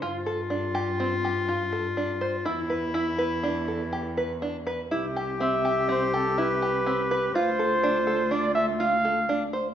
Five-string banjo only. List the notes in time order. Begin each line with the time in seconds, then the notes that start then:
0.02 F4
0.26 A4
0.50 D4
0.75 G4
1.00 C4
1.25 G4
1.49 F4
1.72 A4
1.97 D4
2.21 C5
2.45 E4
2.70 B4
2.94 E4
3.18 B4
3.43 D4
3.68 A4
3.93 G4
4.17 B4
4.42 D4
4.67 B4
4.91 E4
5.16 G4
5.40 C4
5.65 G4
5.89 C4
6.14 G4
6.38 E4
6.62 G4
6.87 C4
7.11 B4
7.35 F4
7.59 A4
7.83 D4
8.07 A4
8.31 D4
8.56 A4
8.80 F4
9.05 A4
9.29 D4
9.53 C5